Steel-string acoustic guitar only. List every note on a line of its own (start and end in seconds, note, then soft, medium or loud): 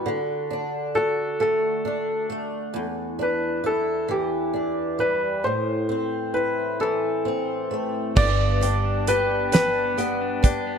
0.00 0.14 G3 soft
0.00 0.15 B3 soft
0.00 0.14 E4 soft
0.06 2.77 D3 medium
0.50 1.84 D4 soft
0.95 2.84 F#4 medium
1.40 2.28 A3 medium
1.85 3.18 D4 soft
2.30 2.84 A3 medium
2.74 5.44 E2 medium
3.19 4.52 D4 soft
3.64 6.33 E4 medium
4.08 6.80 E3 medium
4.54 5.53 D4 soft
4.99 5.53 G3 soft
5.44 8.17 A2 medium
5.89 7.24 C4 soft
6.34 8.25 E4 soft
6.80 8.26 E3 medium
7.25 8.26 C4 soft
7.71 8.26 A3 soft
8.16 10.78 G2 medium
8.61 9.51 D4 medium
9.08 10.78 G4 medium
9.52 10.41 D4 medium
9.98 10.78 B3 medium
10.43 10.78 D4 medium